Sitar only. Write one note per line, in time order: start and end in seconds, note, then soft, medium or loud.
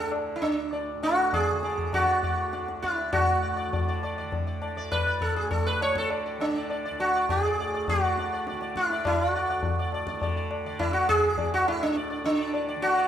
0.00 0.11 A4 medium
0.36 0.42 E4 medium
0.42 1.04 D4 medium
0.73 1.00 D5 soft
1.03 1.33 F#4 loud
1.03 1.31 D5 soft
1.34 1.93 G#4 loud
1.34 1.61 D5 soft
1.64 1.91 D5 soft
1.94 2.79 F#4 loud
1.94 2.21 D5 soft
2.24 2.51 D5 soft
2.53 2.81 D5 soft
2.82 3.11 E4 medium
2.82 3.11 D5 soft
3.13 3.98 F#4 loud
3.27 3.41 D5 soft
3.42 3.56 D5 soft
3.57 3.71 D5 soft
3.73 3.87 D5 soft
3.88 4.02 D5 soft
4.03 4.17 D5 soft
4.18 4.45 D5 soft
4.47 4.61 D5 soft
4.62 4.76 D5 soft
4.77 5.05 D5 soft
4.92 5.22 B4 loud
5.06 5.34 D5 soft
5.22 5.36 A4 medium
5.36 5.50 G#4 medium
5.51 5.66 A4 medium
5.66 5.82 B4 loud
5.82 5.97 C#5 loud
5.98 6.11 A4 medium
6.11 6.25 D5 soft
6.26 6.53 D5 soft
6.41 7.02 D4 medium
6.55 6.69 D5 soft
6.70 6.84 D5 soft
6.85 7.13 D5 soft
7.00 7.30 F#4 loud
7.15 7.42 D5 soft
7.30 7.89 G#4 loud
7.45 7.59 D5 soft
7.60 7.73 D5 soft
7.74 8.01 D5 soft
7.89 8.77 F#4 loud
8.04 8.18 D5 soft
8.19 8.32 D5 soft
8.33 8.47 D5 soft
8.48 8.61 D5 soft
8.62 8.89 D5 soft
8.77 9.06 E4 loud
8.92 9.18 D5 soft
9.07 9.31 E4 loud
9.21 9.35 D5 soft
9.31 9.90 F#4 loud
9.36 9.49 D5 soft
9.50 9.77 D5 soft
9.79 9.93 D5 soft
9.94 10.07 D5 soft
10.08 10.21 D5 soft
10.23 10.36 D5 soft
10.37 10.64 D5 soft
10.66 10.93 D5 soft
10.79 10.93 E4 loud
10.93 11.07 F#4 medium
11.09 11.50 G#4 loud
11.39 11.65 D5 soft
11.54 11.68 F#4 loud
11.68 11.83 E4 loud
11.83 11.96 D4 medium
11.97 12.09 D5 soft
12.10 12.37 D5 soft
12.25 12.85 D4 medium
12.39 12.53 D5 soft
12.54 12.67 D5 soft
12.68 12.95 D5 soft
12.82 13.08 F#4 loud
12.97 13.08 D5 soft